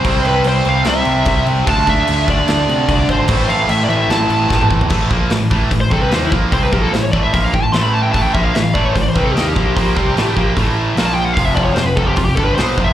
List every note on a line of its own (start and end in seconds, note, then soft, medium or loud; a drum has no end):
0.00 0.27 C5 medium
0.04 0.20 C2 loud
0.04 0.65 C3 loud
0.04 0.65 G3 loud
0.04 0.64 C4 loud
0.04 0.63 E4 loud
0.04 kick loud
0.04 crash medium
0.25 0.40 C2 loud
0.25 0.47 B4 medium
0.25 crash medium
0.44 0.61 C2 loud
0.44 0.67 C5 loud
0.44 crash medium
0.64 0.81 C2 loud
0.64 1.26 C3 medium
0.64 1.26 G3 medium
0.64 1.25 C4 loud
0.64 1.65 E4 medium
0.64 crash medium
0.69 0.86 F5 medium
0.85 1.01 C2 loud
0.85 snare loud
0.85 crash medium
0.89 1.44 E5 medium
1.05 1.22 C2 loud
1.05 crash medium
1.25 1.42 C2 loud
1.25 1.66 C3 medium
1.25 1.67 G3 medium
1.25 kick loud
1.25 crash medium
1.30 1.67 C4 loud
1.46 1.62 C2 medium
1.46 crash medium
1.67 1.83 D2 loud
1.67 2.27 D3 loud
1.67 2.29 A3 loud
1.67 2.27 D4 loud
1.67 2.26 F4 loud
1.67 1.89 A5 loud
1.67 kick loud
1.67 crash medium
1.87 2.03 D2 medium
1.87 2.29 E5 loud
1.87 kick medium
1.87 crash medium
2.07 2.39 D2 medium
2.07 crash medium
2.27 2.88 D3 medium
2.27 2.90 A3 medium
2.27 2.87 D4 loud
2.27 3.27 F4 medium
2.27 3.05 D5 medium
2.27 kick medium
2.27 crash medium
2.48 2.64 D2 loud
2.48 snare loud
2.48 crash medium
2.69 2.84 C3 medium
2.69 crash medium
2.88 3.04 C2 loud
2.88 3.28 D3 medium
2.88 3.30 A3 medium
2.88 3.29 D4 medium
2.88 kick medium
2.88 crash medium
3.09 3.24 G#1 medium
3.09 3.51 C5 medium
3.09 kick medium
3.09 crash medium
3.28 3.44 A1 loud
3.28 3.88 A2 loud
3.28 3.89 E3 medium
3.28 3.89 A3 loud
3.28 3.89 C4 loud
3.28 3.87 E4 medium
3.28 kick loud
3.28 crash medium
3.48 3.64 A1 medium
3.48 3.70 F5 medium
3.48 crash medium
3.69 3.84 A1 medium
3.69 3.84 E5 medium
3.69 crash medium
3.84 3.89 D5 medium
3.88 4.04 A1 medium
3.88 4.50 E3 medium
3.88 4.49 A3 loud
3.88 4.89 C4 medium
3.88 4.89 E4 medium
3.88 4.10 E5 medium
3.88 crash medium
3.93 4.48 A2 medium
4.08 4.24 A1 loud
4.08 4.67 A5 medium
4.08 snare loud
4.08 crash medium
4.30 4.45 A1 medium
4.30 crash medium
4.50 4.66 A1 loud
4.50 4.88 A2 medium
4.50 4.89 E3 medium
4.50 4.89 A3 medium
4.50 kick medium
4.50 snare medium
4.61 mid tom medium
4.71 4.86 A1 medium
4.71 kick medium
4.81 floor tom loud
4.89 5.09 A1 medium
4.89 5.09 A2 loud
4.89 5.10 E3 medium
4.89 5.10 A3 loud
4.89 kick loud
4.89 crash loud
5.11 5.29 A#1 medium
5.11 5.30 A#2 medium
5.11 5.30 F3 loud
5.11 5.31 A#3 loud
5.11 kick loud
5.30 5.50 A1 medium
5.30 5.47 A2 medium
5.30 5.47 E3 medium
5.30 snare loud
5.30 open hi-hat medium
5.51 5.70 A1 medium
5.51 5.70 A2 loud
5.51 5.71 E3 loud
5.51 5.71 A3 loud
5.51 kick loud
5.71 5.90 A1 medium
5.71 5.87 A2 medium
5.71 5.88 E3 medium
5.71 kick medium
5.71 open hi-hat medium
5.80 5.91 C5 medium
5.91 6.10 C2 medium
5.91 6.11 C3 medium
5.91 6.11 G3 medium
5.91 6.12 C4 loud
5.91 6.02 A4 medium
5.91 kick loud
6.03 6.15 B4 medium
6.11 6.30 D#2 loud
6.11 6.31 D#3 medium
6.11 6.31 A#3 medium
6.11 6.32 D#4 medium
6.11 6.23 C5 medium
6.11 snare loud
6.11 open hi-hat medium
6.25 6.30 E4 medium
6.31 6.50 A#1 medium
6.31 6.51 A#2 medium
6.31 6.52 F3 loud
6.31 6.52 A#3 loud
6.31 kick loud
6.52 6.71 C2 loud
6.52 6.72 C3 loud
6.52 6.72 G3 loud
6.52 6.72 C4 loud
6.52 6.63 C5 medium
6.52 kick loud
6.52 open hi-hat medium
6.63 6.72 B4 medium
6.72 6.91 A#1 loud
6.72 6.92 A#2 medium
6.72 6.92 F3 medium
6.72 6.93 A#3 loud
6.72 6.82 G4 medium
6.72 kick loud
6.82 6.92 A4 medium
6.92 7.11 A1 medium
6.92 7.09 A2 medium
6.92 7.09 E3 medium
6.92 7.02 C5 medium
6.92 snare loud
6.92 open hi-hat medium
7.02 7.11 C#5 medium
7.12 7.32 A1 medium
7.12 7.33 A2 loud
7.12 7.33 E3 loud
7.12 7.33 A3 loud
7.12 7.22 D5 medium
7.12 kick loud
7.23 7.32 E5 medium
7.33 7.52 A#1 medium
7.33 7.52 A#2 medium
7.33 7.53 F3 loud
7.33 7.53 A#3 medium
7.33 7.44 E5 medium
7.33 kick loud
7.33 open hi-hat soft
7.44 7.54 F5 medium
7.53 7.72 A1 medium
7.53 7.69 A2 medium
7.53 7.70 E3 medium
7.53 7.63 G5 medium
7.53 kick medium
7.63 7.73 A5 medium
7.72 8.11 A1 medium
7.72 8.12 A2 medium
7.72 8.12 E3 loud
7.72 8.12 A3 loud
7.72 7.82 C6 loud
7.72 snare loud
7.72 open hi-hat medium
7.83 7.93 B5 loud
7.93 8.02 A5 medium
8.03 8.12 G5 medium
8.12 8.33 A1 medium
8.12 8.33 A2 medium
8.12 8.33 E3 loud
8.12 8.33 A3 loud
8.12 8.22 A5 medium
8.12 kick loud
8.12 open hi-hat medium
8.22 8.33 G5 medium
8.33 8.53 A#1 loud
8.33 8.53 A#2 medium
8.33 8.54 F3 loud
8.33 8.54 A#3 loud
8.33 8.44 E5 medium
8.33 kick loud
8.44 8.54 F5 medium
8.54 8.74 A1 medium
8.54 8.70 A2 medium
8.54 8.71 E3 medium
8.54 8.64 E5 medium
8.54 snare loud
8.54 open hi-hat medium
8.64 8.74 F5 medium
8.74 8.94 A1 loud
8.74 8.95 A2 loud
8.74 8.95 E3 loud
8.74 8.95 A3 loud
8.74 8.84 D5 medium
8.74 kick loud
8.85 8.93 C#5 medium
8.94 9.14 A1 medium
8.94 9.12 A2 medium
8.94 9.12 E3 medium
8.94 9.01 C5 medium
8.94 kick medium
8.94 open hi-hat medium
9.02 9.08 D5 loud
9.09 9.16 C5 medium
9.16 9.34 C2 medium
9.16 9.35 C3 medium
9.16 9.36 G3 loud
9.16 9.36 C4 loud
9.16 9.25 B4 medium
9.16 kick loud
9.24 9.32 A4 medium
9.33 9.54 D#2 medium
9.33 9.56 D#3 medium
9.33 10.51 G4 medium
9.37 9.56 A#3 loud
9.37 9.56 D#4 loud
9.37 snare loud
9.37 open hi-hat medium
9.56 9.75 A#1 medium
9.56 9.75 A#2 medium
9.56 9.76 F3 loud
9.56 9.76 A#3 loud
9.56 kick loud
9.77 9.95 A#1 medium
9.77 9.96 A#2 medium
9.77 9.96 F3 loud
9.77 9.96 A#3 loud
9.77 kick loud
9.77 open hi-hat medium
9.96 10.15 C2 loud
9.96 10.16 C3 medium
9.96 10.16 G3 loud
9.96 10.16 C4 medium
9.96 kick loud
10.16 10.35 A1 medium
10.16 10.36 A2 medium
10.16 10.36 E3 loud
10.16 10.36 A3 loud
10.16 snare loud
10.16 open hi-hat medium
10.37 10.55 A#1 medium
10.37 10.56 A#2 loud
10.37 10.56 F3 loud
10.37 10.56 A#3 loud
10.37 kick loud
10.57 10.94 A1 medium
10.57 10.96 A2 medium
10.57 10.97 E3 loud
10.57 10.97 A3 loud
10.57 kick loud
10.57 open hi-hat medium
10.96 11.34 A#1 medium
10.96 11.38 A#2 medium
10.96 11.37 F3 medium
10.96 11.38 A#3 loud
10.96 snare loud
10.96 open hi-hat medium
11.06 11.14 A5 loud
11.14 11.25 G5 loud
11.25 11.36 F#5 medium
11.33 11.56 F1 loud
11.33 11.45 F5 medium
11.33 kick loud
11.33 open hi-hat medium
11.39 11.56 F2 loud
11.39 11.57 C3 loud
11.39 11.57 F3 loud
11.45 11.55 E5 medium
11.55 11.75 F1 loud
11.55 11.76 F2 medium
11.55 11.77 C3 medium
11.55 11.77 F3 loud
11.55 11.63 D5 loud
11.55 kick loud
11.64 11.75 C#5 medium
11.75 11.95 F1 medium
11.75 11.93 F2 medium
11.75 11.94 C3 medium
11.75 11.86 C5 medium
11.75 snare loud
11.75 open hi-hat medium
11.86 11.96 B4 medium
11.97 12.16 F1 medium
11.97 12.17 F2 medium
11.97 12.17 C3 loud
11.97 12.18 F3 loud
11.97 12.07 A4 medium
11.97 kick loud
12.07 12.17 G4 medium
12.16 12.36 F1 medium
12.16 12.34 F2 medium
12.16 12.34 C3 medium
12.16 12.25 F4 medium
12.16 kick loud
12.16 open hi-hat medium
12.25 12.36 G4 medium
12.36 12.56 G1 medium
12.36 12.58 G2 medium
12.36 12.57 D3 loud
12.36 12.58 G3 loud
12.36 12.45 A4 loud
12.36 kick loud
12.45 12.55 B4 medium
12.55 12.76 B1 medium
12.55 12.78 B2 medium
12.55 12.78 F#3 medium
12.55 12.84 C5 medium
12.55 snare loud
12.55 open hi-hat medium
12.59 12.78 B3 loud
12.77 12.93 F1 loud
12.77 12.93 F2 loud
12.77 12.93 C3 loud
12.77 12.93 F3 loud
12.77 kick loud
12.84 12.93 E5 medium